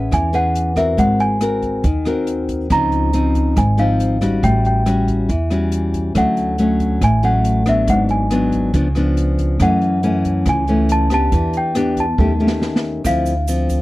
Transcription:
Already playing: nylon-string guitar A3 C#4 G#4 B4, celesta F#5
0.11 upright bass E2, nylon-string guitar E3, celesta G#5, kick, cross-stick, closed hi-hat
0.33 nylon-string guitar C#4 G#4 B4, celesta F#5, closed hi-hat
0.55 closed hi-hat
0.76 nylon-string guitar C4 F#4 A#4, celesta E5, kick, cross-stick, closed hi-hat
0.97 upright bass G#1, nylon-string guitar G#3, celesta F#5, kick, closed hi-hat
1.20 celesta G#5, closed hi-hat
1.41 nylon-string guitar C4 F#4 A#4, cross-stick, closed hi-hat
1.62 kick, closed hi-hat
1.84 upright bass D#2, nylon-string guitar D#3, kick, closed hi-hat
2.05 nylon-string guitar C4 F#4 A#4, cross-stick, closed hi-hat
2.27 closed hi-hat
2.49 kick, closed hi-hat
2.70 upright bass C#2, nylon-string guitar C#3 F3 C4 D#4, celesta A#5, kick, cross-stick, closed hi-hat
2.92 closed hi-hat
3.13 nylon-string guitar F3 C4 D#4, closed hi-hat
3.35 kick, closed hi-hat
3.56 upright bass G#1, nylon-string guitar G#2, celesta G#5, kick, cross-stick, closed hi-hat
3.78 nylon-string guitar F3 C4 D#4, celesta F5, closed hi-hat
4.00 closed hi-hat
4.21 nylon-string guitar G3 C#4 F#4, kick, cross-stick, closed hi-hat
4.43 upright bass A1, nylon-string guitar A2, celesta G5, kick, closed hi-hat
4.65 celesta G5, closed hi-hat
4.86 nylon-string guitar G3 C#4 F#4, cross-stick, closed hi-hat
5.08 kick, closed hi-hat
5.29 upright bass E2, nylon-string guitar E3, kick, closed hi-hat
5.50 nylon-string guitar G3 C#4 F#4, cross-stick, closed hi-hat
5.72 closed hi-hat
5.94 kick, closed hi-hat
6.15 upright bass D2, nylon-string guitar D3 F#3 A3 C#4, celesta F#5, kick, cross-stick, closed hi-hat
6.37 closed hi-hat
6.58 nylon-string guitar F#3 A3 C#4, closed hi-hat
6.80 kick, closed hi-hat
7.01 upright bass A1, nylon-string guitar A2, celesta G#5, kick, cross-stick, closed hi-hat
7.23 nylon-string guitar F#3 A3 C#4, celesta F#5, closed hi-hat
7.44 closed hi-hat
7.66 nylon-string guitar F#3 B3 D4, celesta E5, kick, cross-stick, closed hi-hat
7.87 upright bass G#1, nylon-string guitar G#2, celesta F#5, kick, closed hi-hat
8.09 celesta G#5, closed hi-hat
8.31 nylon-string guitar F#3 B3 D4, cross-stick, closed hi-hat
8.52 kick, closed hi-hat
8.74 upright bass C#2, nylon-string guitar C#3 F3 B3 D4, kick, closed hi-hat
8.95 nylon-string guitar F3 B3 D4, cross-stick, closed hi-hat
9.17 closed hi-hat
9.38 kick, closed hi-hat
9.60 upright bass F#2, nylon-string guitar F#2 E3 A3 C#4, celesta F#5, kick, cross-stick, closed hi-hat
9.81 closed hi-hat
10.03 nylon-string guitar E3 A3 C#4, closed hi-hat
10.25 kick, closed hi-hat
10.46 upright bass C#2, nylon-string guitar C#3, celesta G#5, kick, cross-stick, closed hi-hat
10.67 nylon-string guitar E3 A3 C#4, closed hi-hat
10.89 celesta A5, closed hi-hat
11.10 nylon-string guitar B3 D4 G4, celesta A5, kick, cross-stick, closed hi-hat
11.32 upright bass E2, nylon-string guitar E3, kick, closed hi-hat
11.53 closed hi-hat
11.57 celesta G5
11.75 nylon-string guitar B3 D4 G4, cross-stick, closed hi-hat
11.97 celesta A5, kick, closed hi-hat
12.18 upright bass D#2, nylon-string guitar D#3 A3 C#4 G4, kick, high tom
12.40 nylon-string guitar A3 C#4 G4
12.47 snare
12.62 snare
12.76 snare
13.04 upright bass D2, nylon-string guitar D3 F3 C4 E4, celesta F5, kick, cross-stick, closed hi-hat, shaker
13.26 closed hi-hat, shaker
13.48 nylon-string guitar F3 C4, closed hi-hat, shaker
13.69 kick, closed hi-hat, shaker

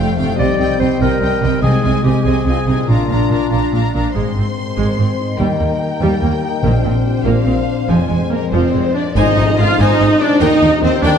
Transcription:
Already playing: harp F3 A3 F4 G4, french horn section G3, violin section F5 G5
0.00 viola section A3
0.16 double bass section F1, cello section F2, french horn section A3, viola section A3, violin section F5 G5
0.22 harp C3
0.26 harp C4
0.31 harp D#4
0.35 double bass section C2, french horn section G3, viola section C4, harp G4, violin section D#5
0.39 cello section C3, clarinet D5, violin section G5
0.59 double bass section C2, cello section C3, viola section C4, violin section D#5 G5
0.79 double bass section C2, cello section C3, viola section C4, clarinet C5, violin section D#5 G5
1.00 double bass section C2, cello section C3, french horn section G3, viola section C4, clarinet A#4, violin section D#5 G5
1.21 double bass section C2, cello section C3, viola section C4, violin section D#5 G5
1.41 double bass section C2, cello section C3, harp C3, viola section C4, violin section D#5 G5
1.49 harp C4
1.53 harp D#4
1.58 harp G#4
1.62 double bass section C2, cello section C3, french horn section G#3, viola section C4, clarinet G#4, violin section D#5 G#5
1.82 double bass section C2, cello section C3, viola section C4, violin section D#5 G#5
2.03 double bass section C2, cello section C3, viola section C4, clarinet G4, violin section D#5 G#5
2.24 double bass section C2, cello section C3, viola section C4, french horn section C4, clarinet G#4, violin section D#5 G#5
2.45 double bass section C2, cello section C3, viola section C4, french horn section F4, violin section D#5 G#5
2.66 double bass section C2, cello section C3, viola section C4, french horn section D#4, violin section D#5 G#5
2.71 harp A#2
2.76 harp D4
2.80 harp F4
2.84 harp A#4, violin section F5
2.88 double bass section A#1, cello section A#2, viola section D4, french horn section D4, clarinet F4, violin section A#5
3.08 double bass section A#1, cello section A#2, viola section D4, violin section F5 A#5
3.29 double bass section A#1, cello section A#2, viola section D4, violin section F5 A#5
3.50 double bass section A#1, cello section A#2, viola section D4, violin section F5 A#5
3.73 double bass section A#1, cello section A#2, viola section D4, violin section F5 A#5
3.94 double bass section A#1, cello section A#2, viola section D4, violin section F5 A#5
4.14 double bass section G#1, cello section G#2, harp G#2, viola section G#3, french horn section G#3 C4, violin section C5 C6
4.35 double bass section G#1, cello section G#2, viola section C4, harp G#4
4.57 harp A#4
4.77 double bass section G#1, cello section G#2, viola section G#3, harp G#4
4.98 double bass section G#1, cello section G#2, viola section C4, harp C5
5.20 harp D#4
5.39 cello section D#2, double bass section D#2, timpani D#3, harp D#3, viola section G3, french horn section A#3 D#4, violin section A#4 G5
5.60 cello section D#2, double bass section D#2, viola section A#3, harp G4
5.81 harp G#4
6.01 cello section D#2, double bass section D#2, viola section G3, harp G4
6.22 cello section D#2, double bass section D#2, viola section A#3, harp A#4
6.44 harp D#4
6.62 double bass section A#1, timpani A#2, harp A#2, cello section A#2, viola section A#3, french horn section C4 D4, violin section C5
6.84 double bass section A#1, cello section A#2, viola section C4, harp F4
7.05 harp G4
7.24 double bass section A#1, cello section A#2, viola section A#3, harp F4, violin section F5
7.45 double bass section A#1, cello section A#2, viola section C4, harp C5
7.67 harp D4
7.88 double bass section F1, harp F2, cello section F2, viola section F3, french horn section G#3 C4, violin section G#5
8.09 double bass section F1, cello section F2, viola section G#3, harp G#4
8.30 viola section A#3, harp A#4, violin section A#4
8.52 double bass section F1, cello section F2, viola section F3 C4, harp G#4, violin section C5
8.73 double bass section F1, cello section F2, viola section G#3, harp C5
8.94 harp C4, viola section D4, violin section D5
9.16 double bass section G#1, cello section G#2, harp G#2, viola section D#4, violin section C5 D#5 G#5, tam-tam
9.27 harp D#3
9.37 double bass section G#1, cello section G#2, harp G#3, violin section C5 G#5
9.47 harp G#4
9.58 double bass section G#1, cello section G#2, viola section F4, violin section G#4 D#5 F5, harp C5
9.69 harp G#4
9.78 double bass section G#1, cello section G#2, viola section D#4, violin section C5 D#5 G#5, harp G#5
9.91 harp C6
9.99 double bass section G#1, cello section G#2, violin section C5 G#5, harp G#5
10.11 harp G#4
10.21 viola section D4, harp C5, violin section D5
10.30 harp G#3
10.40 cello section D#2, double bass section D#2, harp D#3, viola section D#4, violin section A#4 D#5 G5
10.52 harp D#4
10.61 cello section D#2, double bass section D#2, harp A#3, violin section A#4 G5
10.73 harp G4
10.82 cello section D#2, double bass section D#2, viola section C4, violin section G4 C5 D#5, harp A#4
10.94 harp G4
11.03 cello section D#2, double bass section D#2, viola section D4, violin section A#4 D5 G5, harp G5
11.14 harp A#5

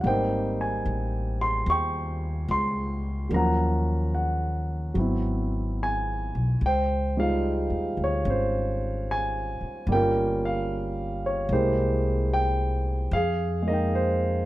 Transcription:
0.01 upright bass G#1, grand piano G3 F#5
0.06 grand piano A#3 C4 D#4 C5 G5
0.61 grand piano G#5
0.85 upright bass A1
1.41 grand piano C6
1.66 upright bass D#2, grand piano C#6
1.71 grand piano G5
2.48 upright bass C#2, grand piano C6
3.29 upright bass D#2, grand piano F#3 A#3 C#4
3.34 grand piano F3 F#5 A#5
4.15 grand piano F#5
4.94 upright bass G#1, grand piano F#3 B3 C4
4.99 grand piano E4
5.83 grand piano G#5
6.35 upright bass B1
6.61 upright bass C#2
6.66 grand piano C5 G5
7.17 grand piano G3 G#3 D#4 F4 F5
7.70 upright bass D#2
7.97 upright bass D2
8.04 grand piano C#5
8.25 upright bass G#1, grand piano C#4 F4
8.30 grand piano C5
9.11 grand piano G#5
9.61 muted upright bass stroke
9.87 upright bass G1, grand piano G3 A#3
9.92 grand piano C#4 F4 A#4 G5
10.45 grand piano F5
11.26 grand piano C#5
11.49 upright bass C2, grand piano G#3 A#3 E4 C5
11.53 grand piano G4
12.34 grand piano G5
13.11 upright bass F2, grand piano G#4 F5
13.62 grand piano G#3 A#3
13.68 grand piano D#4 D#5
13.73 grand piano G5
13.95 grand piano C5

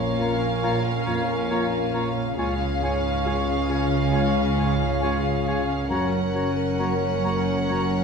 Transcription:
Already playing: grand piano A#1 F2 A#3 F4 C#5, double bass section A#1, cello section A#2, viola section C#4, french horn section C#4 F4, violin section A#4 F5
0.18 grand piano A#3, clarinet F4, oboe C#5, flute A#5
0.63 grand piano A#1, clarinet F4, oboe C#5, flute A#5
1.05 grand piano F2, clarinet F4, oboe C#5, flute A#5
1.50 grand piano A#3 F4 C#5, clarinet F4, oboe C#5, flute A#5
1.93 grand piano A#3, clarinet F4, oboe C#5, flute A#5
2.36 grand piano C#2, double bass section C#2, cello section C#3, viola section C#4, french horn section C#4 F4, clarinet F4, violin section G#4 F5, oboe C#5, flute G#5
2.81 grand piano G#2, clarinet F4, oboe C#5, flute G#5
3.25 grand piano G#3 F4 C#5, clarinet F4, oboe C#5, flute G#5
3.67 grand piano G#3, clarinet F4, oboe C#5, flute G#5
4.11 grand piano C#2, clarinet F4, flute G#5
4.15 oboe C#5
4.56 grand piano G#2, clarinet F4, oboe C#5, flute G#5
5.00 grand piano G#3 F4 C#5, clarinet F4, oboe C#5, flute G#5
5.47 grand piano G#3, clarinet F4, oboe C#5, flute G#5
5.89 double bass section F#1, grand piano F#2, cello section F#2, viola section C#4, french horn section C#4 A#4, clarinet F#4, violin section A#4 F#5, oboe C#5, flute A#5
6.34 grand piano C#3, clarinet F#4, oboe C#5, flute A#5
6.78 grand piano A#3 F#4 C#5, clarinet F#4, oboe C#5, flute A#5
7.24 grand piano A#3, clarinet F#4, oboe C#5, flute A#5
7.69 grand piano F#2, clarinet F#4, oboe C#5, flute A#5

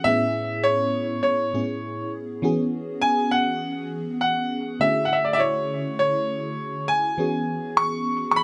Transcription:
0.04 fm electric piano A2 B3 C#4 E4 G#4, grand piano E5
0.64 grand piano C#5
1.23 grand piano C#5
1.54 fm electric piano A2 B3 C#4 E4 G#4
2.42 fm electric piano E3 B3 C#4 F#4 G#4
3.02 grand piano G#5
3.31 grand piano F#5
4.21 grand piano F#5
4.80 fm electric piano D3 A3 C#4 E4 F#4 G#4, grand piano E5
5.05 grand piano F#5
5.13 grand piano E5
5.25 grand piano D5
5.33 grand piano D5 E5
5.39 grand piano C#5
5.99 grand piano C#5
6.88 grand piano G#5
7.18 fm electric piano E3 B3 C#4 F#4 G#4
7.77 grand piano C#6
8.31 grand piano C#6
8.36 grand piano B5

